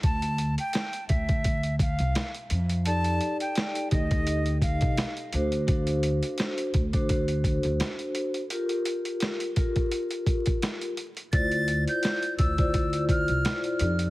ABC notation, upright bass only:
X:1
M:4/4
L:1/16
Q:"Swing 16ths" 1/4=85
K:Dm
V:1 name="Upright bass" clef=bass
D,,3 z3 D,,4- D,, C,, z2 F,,2- | F,,2 z4 D,,4- D,, C,, z2 D,,2- | D,,3 z3 D,,4- D,, D,, z4 | z16 |
D,,3 z3 D,,4- D,, C,, z2 F,,2 |]